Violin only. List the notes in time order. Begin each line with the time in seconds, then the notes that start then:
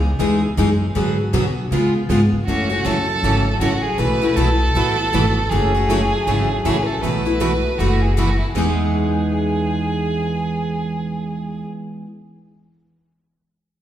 2.45 F#4
2.85 A4
3.61 F#4
3.82 G#4
3.99 B4
4.36 A4
5.50 G#4
6.65 G#4
6.83 A4 B4
7.02 B4
7.79 F#4
8.01 G#4
8.17 F#4
8.40 E4
8.55 G#4